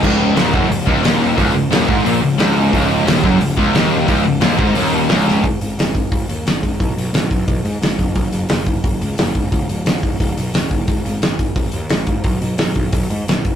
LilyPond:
<<
  \new Staff \with { instrumentName = "Distorted electric guitar" } { \clef bass \time 4/4 \key aes \dorian \tempo 4 = 176 des,4 ees,8 ges,8 des,8 des,8 ees,4 | des,8 des,8 ees,8 aes,8 bes,8 des,8 des,4 | des,4 ees,8 ges,8 des,8 des,8 ees,4 | des,8 des,8 ees,8 aes,8 ees,4 des,4 |
r1 | r1 | r1 | r1 |
r1 | r1 | }
  \new Staff \with { instrumentName = "Distorted electric guitar" } { \clef bass \time 4/4 \key aes \dorian des,4 ees,8 ges,8 des,8 des,8 ees,4 | des,8 des,8 ees,8 aes,8 bes,8 des,8 des,4 | des,4 ees,8 ges,8 des,8 des,8 ees,4 | des,8 des,8 ees,8 aes,8 ees,4 des,4 |
r1 | r1 | r1 | r1 |
r1 | r1 | }
  \new Staff \with { instrumentName = "Overdriven electric guitar" } { \clef bass \time 4/4 \key aes \dorian des,4 ees,8 ges,8 des,8 des,8 ees,4 | des,8 des,8 ees,8 aes,8 bes,8 des,8 des,4 | des,4 ees,8 ges,8 des,8 des,8 ees,4 | des,8 des,8 ees,8 aes,8 ees,4 des,4 |
r1 | r1 | r1 | r1 |
r1 | r1 | }
  \new Staff \with { instrumentName = "Picked electric bass" } { \clef bass \time 4/4 \key aes \dorian des,,4 ees,,8 ges,,8 des,,8 des,,8 ees,,4 | des,,8 des,,8 ees,,8 aes,,8 bes,,8 des,,8 des,,4 | des,,4 ees,,8 ges,,8 des,,8 des,,8 ees,,4 | des,,8 des,,8 ees,,8 aes,,8 ees,,4 des,,4 |
aes,,8 aes,,8 aes,,4 aes,,8 ees,8 aes,,8 aes,,8 | ces,8 ces,8 ces,8 ces,8 ces,8 aes,8 aes,,8 ges,,8 | ges,,8 ges,,8 ges,,4 ges,,8 des,8 ges,,8 des,,8 | des,,8 des,,8 des,,8 des,,8 des,,8 ces,8 des,,8 ges,,8 |
aes,,8 aes,,8 aes,,4 aes,,8 ees,8 aes,,8 aes,,8 | ces,8 ces,8 ces,8 ces,8 ces,8 aes,8 ces,8 ges,,8 | }
  \new DrumStaff \with { instrumentName = "Drums" } \drummode { \time 4/4 <cymc bd>4 <hho sn>8 bd8 hho8 bd8 <hho sn>4 | <hho bd>4 <hho sn>8 bd8 hho4 <hho sn>4 | <hho bd>4 <hho sn>8 bd8 hho8 bd8 <hho sn>4 | <hho bd>4 <hho sn>8 bd8 hho4 <hho sn>8 sn8 |
<hho bd>8 hho8 <hho sn>8 <hho bd>8 <hho bd>8 hho8 <hho sn>8 <hho bd>8 | <hho bd>8 hho8 <hho sn>8 <hho bd>8 <hho bd>8 hho8 <hho sn>8 <hho bd>8 | <hho bd>8 hho8 <hho sn>8 <hho bd>8 <hho bd>8 hho8 <hho sn>8 <hho bd>8 | <hho bd>8 hho8 <hho sn>8 <hho bd>8 <hho bd>8 hho8 <hho sn>8 <hho bd>8 |
<hho bd>8 hho8 <hho sn>8 <hho bd>8 <hho bd>8 hho8 <hho sn>8 <hho bd>8 | <hho bd>8 hho8 <hho sn>8 <hho bd>8 <hho bd>8 hho8 <hho sn>8 <hho bd>8 | }
>>